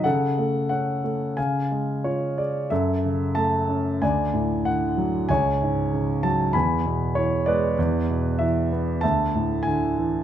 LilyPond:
<<
  \new Staff \with { instrumentName = "Grand piano" } { \time 4/4 \key fis \minor \tempo 4 = 95 << { fis''4 fis''4 gis''4 cis''8 d''8 | e''4 a''4 gis''4 fis''4 | gis''4. a''8 b''4 cis''8 d''8~ | d''4 e''4 a''4 gis''4 | } \\ { a'2 eis''2 | a'2 d''2 | cis''2 gis''4. b'8~ | b'4. r8 e''2 | } >> }
  \new Staff \with { instrumentName = "Grand piano" } { \clef bass \time 4/4 \key fis \minor cis8 a8 cis'8 a8 cis8 gis8 eis'8 gis'8 | fis,8 cis8 a8 cis'8 d,8 a,8 d8 fis8 | cis,8 gis,8 cis8 fis8 e,8 b,8 e8 gis8 | e,8 b,8 e8 b8 d,8 a,8 d8 e8 | }
>>